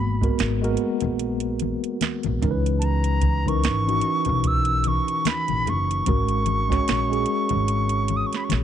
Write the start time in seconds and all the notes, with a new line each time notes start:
Already playing: G#1 G#3 A#3 B3 F#4 B5
0.21 G#3 B3 F#4 A#4, kick, closed hi-hat
0.38 G#1, snare, closed hi-hat, muted conga
0.62 G#3 A#3 F#4 A#4, closed hi-hat
0.69 B3
0.77 closed hi-hat
1.00 A#1, closed hi-hat, high conga, low conga
1.19 closed hi-hat, muted conga
1.40 closed hi-hat
1.59 closed hi-hat, high conga
1.84 closed hi-hat
2.01 snare, closed hi-hat, high conga
2.23 A#1, closed hi-hat, muted conga, high conga
2.42 C#2 E3 C#4 D#4 A#4, kick, closed hi-hat, low conga
2.51 B4
2.66 closed hi-hat
2.79 A5, closed hi-hat, muted conga
2.85 A#5
3.04 closed hi-hat
3.21 kick, closed hi-hat, high conga
3.46 E3 C#4 D#4 A#4 C#6, kick, closed hi-hat
3.64 G#1, snare, closed hi-hat
3.86 E3 C#4 D#4 F#4, closed hi-hat, muted conga
4.01 closed hi-hat
4.25 B1, closed hi-hat, high conga, low conga
4.44 E6, kick, closed hi-hat, muted conga
4.65 closed hi-hat
4.84 C#6, closed hi-hat, high conga
5.08 closed hi-hat
5.25 B5, snare, closed hi-hat, muted conga, high conga
5.48 A#1, closed hi-hat, high conga
5.66 F#1 C#6, closed hi-hat, low conga
5.91 closed hi-hat
6.06 G#1 G#3 C#4 F#4 A#4, kick, closed hi-hat, muted conga
6.28 closed hi-hat, muted conga
6.46 closed hi-hat, high conga
6.69 G#3 C#4 F#4 C#5, kick, snare, closed hi-hat
6.88 A#1, snare, closed hi-hat
7.10 G#3 C#4 F#4 G#4, closed hi-hat
7.26 closed hi-hat
7.49 G#1, closed hi-hat, high conga, low conga
7.68 closed hi-hat
7.89 closed hi-hat, muted conga
8.08 closed hi-hat, high conga
8.17 D#6
8.27 C#6
8.33 B5, snare, closed hi-hat
8.44 C#6
8.50 A#1, snare, closed hi-hat, high conga